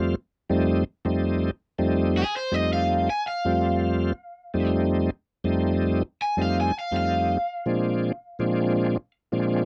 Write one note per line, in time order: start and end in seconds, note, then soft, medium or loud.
0.00 0.15 F2 medium
0.00 0.15 G3 medium
0.00 0.15 A3 medium
0.00 0.15 C4 medium
0.00 0.15 F4 medium
0.50 0.84 F2 medium
0.50 0.84 G3 medium
0.50 0.84 A3 medium
0.50 0.84 C4 medium
0.50 0.84 D#4 loud
1.05 1.51 F2 medium
1.05 1.51 G3 medium
1.05 1.51 A3 medium
1.05 1.51 C4 medium
1.05 1.51 D#4 medium
1.78 2.24 F2 medium
1.78 2.24 G3 medium
1.78 2.24 A3 medium
1.78 2.24 C4 medium
1.78 2.25 D#4 medium
2.17 2.35 G#4 medium
2.36 2.54 C5 medium
2.52 3.09 F2 medium
2.52 3.09 G3 medium
2.52 3.10 A3 medium
2.52 3.10 C4 medium
2.52 3.10 D#4 medium
2.52 2.72 D#5 medium
2.73 3.08 F5 medium
3.10 3.26 G#5 medium
3.28 4.69 F5 medium
3.45 4.12 F2 medium
3.45 4.13 G3 medium
3.45 4.13 A3 medium
3.45 4.13 C4 medium
3.45 4.13 F4 medium
4.54 5.10 F2 medium
4.54 5.10 G3 medium
4.54 5.10 A3 medium
4.54 5.11 C4 medium
4.54 5.11 D#4 medium
5.44 6.03 F2 medium
5.44 6.03 G3 medium
5.44 6.03 A3 medium
5.44 6.03 C4 medium
5.44 6.03 D#4 loud
6.22 6.39 G#5 medium
6.37 6.72 F2 medium
6.37 6.72 G3 medium
6.37 6.72 A3 medium
6.37 6.72 C4 medium
6.37 6.72 D#4 medium
6.42 6.57 F5 medium
6.61 6.77 G#5 medium
6.79 6.94 F5 medium
6.91 7.38 F2 medium
6.91 7.38 G3 medium
6.91 7.38 A3 medium
6.91 7.38 C4 medium
6.91 7.38 D#4 medium
6.96 9.11 F5 medium
7.66 8.12 A#2 medium
7.66 8.12 F3 medium
7.66 8.12 G#3 medium
7.66 8.12 C4 medium
7.66 8.12 D4 medium
8.39 8.97 A#2 medium
8.39 8.97 F3 medium
8.39 8.97 G#3 medium
8.39 8.97 C4 medium
8.39 8.98 D4 medium
9.32 9.65 A#2 medium
9.32 9.65 F3 medium
9.32 9.65 G#3 medium
9.32 9.65 C4 medium
9.32 9.65 D4 medium